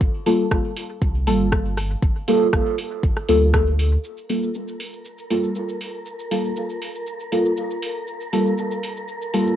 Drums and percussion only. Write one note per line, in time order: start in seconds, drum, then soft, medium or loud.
0.01 kick loud
0.26 open hi-hat medium
0.51 kick loud
0.51 cross-stick medium
0.77 open hi-hat medium
1.02 kick loud
1.27 open hi-hat medium
1.52 kick loud
1.52 cross-stick medium
1.77 cross-stick soft
1.77 open hi-hat medium
2.03 kick loud
2.28 open hi-hat medium
2.53 kick loud
2.53 cross-stick medium
2.78 open hi-hat medium
3.03 kick loud
3.17 cross-stick soft
3.29 open hi-hat medium
3.54 kick loud
3.54 cross-stick medium
3.79 open hi-hat medium
4.04 shaker medium
4.18 shaker soft
4.29 open hi-hat medium
4.43 shaker soft
4.55 shaker medium
4.68 shaker soft
4.80 open hi-hat medium
4.93 shaker soft
5.05 shaker medium
5.19 shaker soft
5.30 open hi-hat medium
5.44 shaker soft
5.56 shaker medium
5.69 shaker soft
5.81 open hi-hat medium
6.06 shaker medium
6.19 shaker soft
6.31 open hi-hat medium
6.45 shaker soft
6.57 shaker medium
6.70 shaker soft
6.82 open hi-hat medium
6.95 shaker soft
7.07 shaker medium
7.20 shaker soft
7.32 open hi-hat medium
7.45 shaker soft
7.57 shaker medium
7.71 shaker soft
7.82 open hi-hat medium
8.08 shaker medium
8.21 shaker soft
8.33 open hi-hat medium
8.46 shaker soft
8.58 shaker medium
8.71 shaker soft
8.83 open hi-hat medium
8.97 shaker soft
9.08 shaker medium
9.22 shaker soft
9.34 open hi-hat medium
9.47 shaker soft